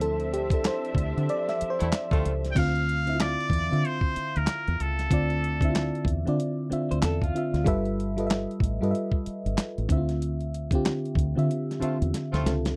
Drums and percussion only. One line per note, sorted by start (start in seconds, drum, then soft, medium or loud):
0.01 closed hi-hat medium
0.20 closed hi-hat soft
0.34 closed hi-hat medium
0.50 kick medium
0.50 closed hi-hat medium
0.64 snare loud
0.64 clap medium
0.64 closed hi-hat medium
0.85 closed hi-hat soft
0.95 kick medium
0.95 closed hi-hat medium
1.18 closed hi-hat soft
1.29 closed hi-hat medium
1.49 snare soft
1.49 closed hi-hat soft
1.61 closed hi-hat medium
1.80 closed hi-hat medium
1.93 snare loud
1.93 clap medium
1.93 closed hi-hat medium
2.11 kick medium
2.11 closed hi-hat soft
2.25 closed hi-hat medium
2.45 snare soft
2.45 closed hi-hat soft
2.56 kick loud
2.56 closed hi-hat medium
2.56 crash medium
2.75 closed hi-hat soft
2.89 closed hi-hat medium
3.07 closed hi-hat soft
3.20 snare loud
3.20 clap medium
3.20 closed hi-hat medium
3.40 closed hi-hat soft
3.50 kick medium
3.50 closed hi-hat soft
3.73 closed hi-hat soft
3.85 closed hi-hat medium
4.01 kick medium
4.16 closed hi-hat medium
4.36 closed hi-hat soft
4.47 snare loud
4.47 clap medium
4.47 closed hi-hat medium
4.68 closed hi-hat soft
4.80 closed hi-hat medium
4.99 snare soft
4.99 closed hi-hat soft
5.11 kick loud
5.11 closed hi-hat medium
5.30 closed hi-hat soft
5.44 closed hi-hat medium
5.61 kick medium
5.61 closed hi-hat soft
5.75 snare loud
5.75 clap medium
5.75 closed hi-hat medium
5.95 closed hi-hat soft
6.05 kick medium
6.05 closed hi-hat soft
6.27 closed hi-hat soft
6.40 closed hi-hat medium
6.72 closed hi-hat medium
6.91 closed hi-hat soft
7.02 snare loud
7.02 clap medium
7.02 closed hi-hat medium
7.22 kick medium
7.22 closed hi-hat soft
7.36 closed hi-hat medium
7.54 snare soft
7.54 closed hi-hat soft
7.66 kick loud
7.66 closed hi-hat medium
7.85 closed hi-hat soft
8.00 closed hi-hat medium
8.18 closed hi-hat soft
8.30 snare loud
8.30 clap medium
8.30 closed hi-hat medium
8.51 closed hi-hat soft
8.60 kick medium
8.60 closed hi-hat medium
8.83 closed hi-hat soft
8.95 closed hi-hat medium
9.12 kick medium
9.26 closed hi-hat medium
9.46 closed hi-hat soft
9.58 snare loud
9.58 clap medium
9.58 closed hi-hat medium
9.78 closed hi-hat soft
9.89 kick loud
9.89 closed hi-hat medium
10.09 snare soft
10.09 closed hi-hat soft
10.22 closed hi-hat medium
10.41 closed hi-hat soft
10.54 closed hi-hat medium
10.71 kick medium
10.71 closed hi-hat soft
10.85 snare loud
10.85 clap medium
10.85 closed hi-hat medium
11.05 closed hi-hat soft
11.15 kick medium
11.15 closed hi-hat soft
11.39 closed hi-hat soft
11.51 closed hi-hat medium
11.71 snare soft
11.71 closed hi-hat soft
11.82 closed hi-hat medium
12.02 closed hi-hat soft
12.14 snare medium
12.14 closed hi-hat medium
12.34 snare medium
12.34 closed hi-hat soft
12.46 snare medium
12.46 closed hi-hat medium
12.65 snare medium
12.65 closed hi-hat soft